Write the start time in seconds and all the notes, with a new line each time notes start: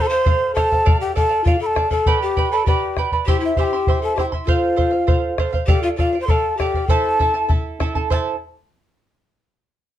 Already playing: A4 C5
0.01 A4 A5
0.07 C5 F5 C6
0.12 C5
0.25 A4 C5 F5, bombo low
0.55 A4 C5 F5 A5, bombo rim, bombo low
0.71 C5 F5, bombo low
0.85 A4 D5 F5, bombo low
1.00 G4 G5
1.15 A4 D5 F5 A5, bombo low
1.29 D5 F5
1.44 F4 A4 D5 F5, bombo low
1.59 A4 B5
1.66 A5
1.75 A4 D5 F5, bombo rim, bombo low
1.90 A4 D5 F5 A5, bombo low
2.06 G4 B4 D5 G5 B5, bombo low
2.22 G4 G5
2.37 B4 D5 G5 B5, bombo low
2.51 A4 B4 D5 A5 B5
2.66 G4 B4 D5 G5 B5, bombo low
2.97 B4 D5 G5 B5, bombo rim, bombo low
3.12 B4 D5 B5, bombo low
3.26 E4 G4 C5 E5 G5 C6, bombo low
3.40 E4
3.45 E5
3.57 E4 G4 C5 E5 G#5 C6, bombo low
3.64 G5
3.73 E4 E5 C6
3.87 E4 C5 E5 C6, bombo low
4.02 A4 A5
4.16 E4 G4 C5 E5 C6, bombo rim, bombo low
4.20 G5
4.32 E4 E5 C6, bombo low
4.45 F4 A4 C5 F5, bombo low
4.50 F5
4.76 A4 C5 F5, bombo low
4.91 C5 F5
5.07 A4 C5 F5, bombo low
5.38 A4 C5 F5, bombo rim, bombo low
5.53 C5 F5, bombo low
5.67 G4 A4 D5 F5 G5, bombo low
5.83 F4 F5
5.97 F4 A4 D5 F5, bombo low
6.13 D5 F5
6.20 C5 C6
6.27 A4 D5 F5 A5, bombo low
6.57 G4 A4 D5 F5 G5, bombo rim, bombo low
6.74 D5 F5, bombo low
6.87 E4 A4 C5 E5 A5, bombo low
7.19 E4 A4 E5 A5, bombo low
7.34 E4 A4 A5
7.49 E4 A4 E5 A5, bombo low
7.80 E4 A4 E5 A5, bombo rim, bombo low
7.95 E4 A4 A5, bombo low
8.10 E4 A4 C5 E5 A5, bombo low